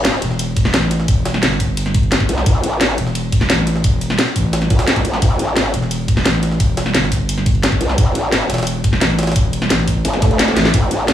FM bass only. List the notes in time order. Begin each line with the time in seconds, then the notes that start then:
0.22 E1
0.74 A1
1.08 E1
1.43 G1
2.98 E1
3.50 A1
3.84 E1
4.36 A1
5.74 E1
6.26 A1
6.60 E1
6.95 G1
8.50 E1
9.01 A1
9.36 E1
9.70 A1
10.57 A1